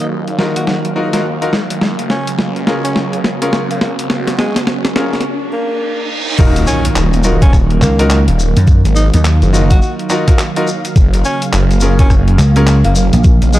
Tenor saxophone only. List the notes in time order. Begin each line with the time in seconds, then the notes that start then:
0.56 F#4
0.67 F#4
2.10 C#4
2.84 C#4
3.71 A#3
3.81 A#3
4.38 G#3
5.52 A#3
6.67 C#4
7.42 C#4
7.82 A#3
8.95 D#4
9.14 D#4
9.70 F#4
9.82 F#4
11.25 C#4
12.00 C#4
12.85 A#3
12.96 A#3
13.54 G#3